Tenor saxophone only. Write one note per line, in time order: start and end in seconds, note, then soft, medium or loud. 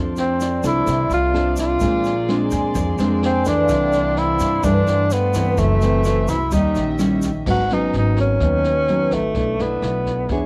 0.19 0.62 C4 medium
0.66 1.09 E4 medium
1.14 1.56 F4 medium
1.61 2.50 F4 medium
3.25 3.49 C4 medium
3.48 4.19 D4 loud
4.18 4.66 E4 medium
4.64 5.14 D4 loud
5.12 5.60 B3 medium
5.59 6.31 A3 medium
6.29 6.53 E4 medium
6.53 6.97 D#4 medium
7.50 7.75 F#4 loud
7.73 7.95 D#4 medium
7.97 8.18 D#4 medium
8.20 9.15 C#4 medium
9.13 9.63 A3 medium
9.61 10.46 B3 medium